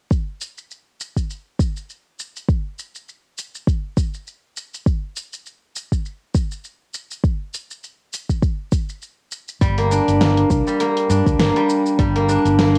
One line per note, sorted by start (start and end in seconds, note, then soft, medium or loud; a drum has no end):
0.11 kick loud
0.11 shaker soft
0.41 shaker medium
0.58 shaker soft
0.71 shaker soft
1.01 shaker medium
1.17 kick soft
1.17 shaker soft
1.30 shaker soft
1.59 kick medium
1.59 shaker medium
1.77 shaker soft
1.90 shaker soft
2.19 shaker medium
2.36 shaker soft
2.49 kick loud
2.49 shaker soft
2.79 shaker medium
2.95 shaker soft
3.09 shaker soft
3.38 shaker medium
3.55 shaker soft
3.67 kick loud
3.67 shaker soft
3.97 kick medium
3.97 shaker medium
4.14 shaker soft
4.27 shaker soft
4.57 shaker medium
4.74 shaker soft
4.86 kick loud
4.86 shaker soft
5.16 shaker medium
5.33 shaker soft
5.46 shaker soft
5.76 shaker medium
5.92 kick medium
5.92 shaker soft
6.05 shaker soft
6.35 kick loud
6.35 shaker medium
6.51 shaker soft
6.64 shaker soft
6.94 shaker medium
7.11 shaker soft
7.24 kick loud
7.24 shaker soft
7.54 shaker medium
7.71 shaker soft
7.84 shaker soft
8.13 shaker medium
8.30 kick medium
8.30 shaker soft
8.43 kick medium
8.43 shaker soft
8.72 kick medium
8.72 shaker medium
8.89 shaker soft
9.02 shaker soft
9.32 shaker medium
9.49 shaker soft
9.61 9.98 G1 medium
9.61 10.66 G3 medium
9.61 kick loud
9.61 open hi-hat medium
9.61 shaker soft
9.78 10.20 A#3 medium
9.78 open hi-hat soft
9.91 11.09 D4 medium
9.91 shaker medium
10.08 10.44 G1 medium
10.08 open hi-hat soft
10.08 shaker soft
10.21 10.80 A#3 medium
10.21 snare medium
10.21 open hi-hat medium
10.21 shaker soft
10.37 open hi-hat soft
10.50 10.61 C2 medium
10.50 kick loud
10.50 shaker medium
10.67 11.55 G3 medium
10.67 shaker soft
10.80 11.39 A#3 medium
10.80 open hi-hat medium
10.80 shaker soft
10.97 open hi-hat soft
11.10 11.21 G2 medium
11.10 12.28 D4 medium
11.10 shaker medium
11.27 11.35 D2 medium
11.27 kick loud
11.27 open hi-hat soft
11.27 shaker soft
11.39 11.50 G1 medium
11.39 12.15 A#3 medium
11.39 snare loud
11.39 open hi-hat medium
11.39 shaker soft
11.56 11.98 G3 medium
11.56 open hi-hat soft
11.70 shaker medium
11.86 shaker soft
11.99 12.36 G1 medium
11.99 12.79 G3 medium
11.99 kick loud
11.99 open hi-hat medium
11.99 shaker soft
12.16 12.58 A#3 medium
12.16 open hi-hat soft
12.29 12.79 D4 medium
12.29 shaker medium
12.45 12.79 G1 medium
12.45 open hi-hat soft
12.45 shaker soft
12.59 12.79 A#3 medium
12.59 snare medium
12.59 open hi-hat medium
12.59 shaker soft
12.75 open hi-hat soft